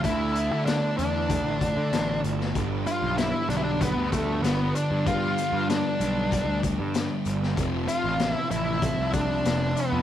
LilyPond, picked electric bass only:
\new Staff \with { instrumentName = "Picked electric bass" } { \clef bass \time 4/4 \key g \mixolydian \tempo 4 = 96 d,8. d8 r16 e,8. a,,8 d16 a,,8 g,,8 | g,,8 r16 b,,8 r16 b,,8. d,8. g,,8 r16 g,16 | g,8 r16 g,8 r16 b,,8. d,8 g,8 r16 g,,8 | f,,8 r16 a,,8 r16 a,,8. c,8. f,,8 r16 f,16 | }